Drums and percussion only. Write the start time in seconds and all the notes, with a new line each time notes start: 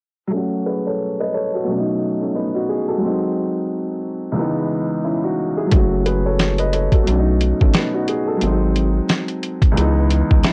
5.71 kick, closed hi-hat
6.06 closed hi-hat
6.39 snare, closed hi-hat
6.58 closed hi-hat
6.73 closed hi-hat
6.92 kick, closed hi-hat
7.07 closed hi-hat
7.41 closed hi-hat
7.61 kick
7.74 snare, closed hi-hat
8.08 closed hi-hat
8.41 closed hi-hat
8.76 closed hi-hat
9.09 snare, closed hi-hat
9.28 closed hi-hat
9.43 closed hi-hat
9.62 kick, closed hi-hat
9.77 closed hi-hat
10.10 closed hi-hat
10.31 kick
10.43 snare, closed hi-hat